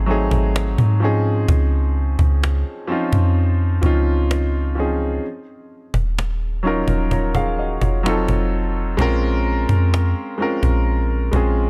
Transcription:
0.00 0.30 G#1 loud
0.00 0.06 F#3 medium
0.00 0.07 A3 medium
0.00 0.08 C4 medium
0.00 0.10 D#4 medium
0.00 0.11 G#4 medium
0.06 1.01 F#3 medium
0.06 1.01 A3 medium
0.06 1.00 C4 medium
0.06 1.02 D#4 medium
0.11 1.03 G#4 medium
0.31 0.77 G#1 medium
0.31 cajon bass medium
0.56 cajon slap loud
0.78 1.46 G#2 medium
0.78 cajon bass medium
1.00 2.72 F3 medium
1.00 2.72 C4 medium
1.00 2.73 C#4 medium
1.00 2.73 D#4 medium
1.04 2.74 G#4 loud
1.49 2.16 C#2 loud
1.49 cajon bass loud
2.19 2.64 C#2 loud
2.19 cajon bass medium
2.44 cajon slap loud
2.87 3.74 F3 medium
2.87 3.74 C4 medium
2.87 3.75 C#4 medium
2.87 3.75 D#4 medium
2.92 3.76 F4 medium
3.13 3.80 F2 loud
3.13 cajon bass medium
3.81 5.20 C#2 loud
3.81 4.68 F3 medium
3.81 4.68 C4 medium
3.81 4.69 C#4 medium
3.81 4.69 D#4 medium
3.81 cajon bass medium
3.86 4.70 F4 loud
4.31 cajon slap loud
4.75 5.23 F3 medium
4.75 5.23 C4 medium
4.75 5.24 C#4 medium
4.75 5.24 D#4 medium
4.80 5.25 G#4 medium
5.94 6.84 D#1 loud
5.94 cajon bass medium
6.19 cajon slap loud
6.63 7.49 F#3 medium
6.63 7.49 C#4 medium
6.63 7.50 D#4 medium
6.63 7.11 F4 medium
6.67 7.13 A#4 medium
6.88 7.78 D#1 loud
6.88 cajon bass medium
7.11 7.34 F4 medium
7.11 7.34 C#5 medium
7.11 cajon bass medium
7.35 7.58 G#4 medium
7.35 7.57 F5 medium
7.35 cajon bass medium
7.59 7.81 F#4 medium
7.59 7.81 D#5 medium
7.81 8.27 F1 medium
7.81 8.05 F4 medium
7.81 8.26 C#5 medium
7.81 cajon bass medium
8.03 8.89 F#3 medium
8.03 8.90 C4 medium
8.03 8.91 D#4 medium
8.03 8.91 F4 medium
8.03 cajon slap loud
8.08 8.92 A4 loud
8.29 8.96 F1 medium
8.29 cajon bass medium
8.97 9.66 A#1 loud
8.97 10.26 G#3 loud
8.97 10.27 C4 loud
8.97 10.27 C#4 loud
8.97 10.28 F4 loud
8.97 cajon bass loud
9.01 10.28 A#4 loud
9.69 10.14 F2 loud
9.69 cajon bass medium
9.94 cajon slap loud
10.38 11.24 G#3 medium
10.38 11.24 C4 medium
10.38 11.25 C#4 medium
10.38 11.26 F4 medium
10.42 11.26 A#4 loud
10.63 11.30 A#1 loud
10.63 cajon bass medium
11.31 11.70 A#1 medium
11.31 11.70 G#3 medium
11.31 11.70 C4 medium
11.31 11.70 C#4 medium
11.31 11.70 F4 medium
11.31 cajon bass medium
11.36 11.70 G#4 medium

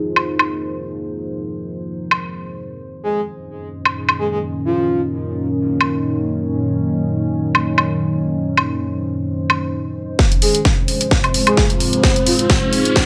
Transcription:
0.00 2.80 F3 medium
0.00 2.76 G#3 medium
0.00 2.76 C4 medium
0.00 3.83 D#4 medium
0.00 2.76 F4 medium
0.00 3.78 G#4 medium
0.00 2.77 A#4 medium
0.00 2.80 C5 medium
0.16 high woodblock medium
0.39 high woodblock medium
2.11 high woodblock medium
2.80 10.19 D#3 medium
2.80 10.15 F#3 medium
2.80 10.15 A#3 medium
2.80 10.15 D#4 medium
2.80 10.15 D#5 medium
2.92 10.19 C#4 medium
3.03 3.21 G#4 medium
3.67 7.46 A#4 medium
3.85 high woodblock medium
4.09 high woodblock medium
4.19 4.27 G#4 medium
4.32 4.38 G#4 medium
4.65 5.01 F4 medium
5.81 high woodblock medium
7.32 13.06 C5 medium
7.55 high woodblock medium
7.78 high woodblock medium
8.57 high woodblock medium
9.50 high woodblock medium
10.19 13.06 F3 medium
10.19 13.06 G#3 medium
10.19 13.06 C4 medium
10.19 13.06 F4 medium
10.19 13.06 C5 loud
10.19 kick loud
10.19 snare soft
10.19 riser medium
10.32 closed hi-hat medium
10.42 10.59 G#4 medium
10.42 open hi-hat loud
10.55 closed hi-hat medium
10.61 13.06 D#4 medium
10.61 kick loud
10.61 snare soft
10.78 13.06 G#4 medium
10.88 open hi-hat loud
11.01 closed hi-hat medium
11.11 kick loud
11.11 snare medium
11.24 closed hi-hat soft
11.24 high woodblock medium
11.34 open hi-hat loud
11.47 11.63 G#4 medium
11.47 closed hi-hat medium
11.47 high woodblock medium
11.57 kick loud
11.57 snare medium
11.70 closed hi-hat medium
11.80 open hi-hat loud
11.93 closed hi-hat medium
12.03 kick loud
12.03 snare medium
12.16 closed hi-hat medium
12.26 12.35 F4 medium
12.26 open hi-hat loud
12.39 12.46 F4 medium
12.39 closed hi-hat medium
12.50 kick loud
12.50 snare medium
12.73 open hi-hat loud
12.85 closed hi-hat medium
12.96 kick loud
12.96 snare medium

